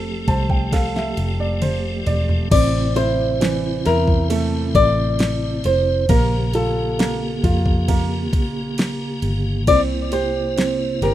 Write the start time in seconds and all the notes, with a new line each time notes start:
Already playing: F1 F3 A3 C4 G4 A4 F5
0.28 C2 C5 A5, kick, ride
0.50 G5, kick
0.72 A4 F5, kick, snare, ride
0.96 E5, snare
1.17 F1, ride
1.40 D5
1.62 C5, mid tom, ride
2.07 E1 D5, floor tom, ride
2.29 floor tom
2.51 A1 C3 C4 E4 D5, kick, crash, ride
2.95 E4 C5, ride
3.41 E3, snare, ride
3.85 E2 E4 A#4, snare, ride
4.08 kick
4.30 A3 A4, ride
4.75 A1 D5, kick, ride
5.19 snare, ride
5.64 F1 C5, ride
6.09 A#1 C#3 A#3 G4 A#4, kick, ride
6.53 F4 A4, ride
6.99 A#3, snare, ride
7.44 F2 F4, kick, ride
7.66 kick
7.88 A#3, kick, ride
8.33 A#1, kick, ride
8.78 snare, ride
9.22 G1, ride
9.67 C2 C3 C4 E4 D5, kick, ride
10.12 G4 C5, ride
10.57 C4, snare, ride
11.02 G1 G4 A#4, snare, ride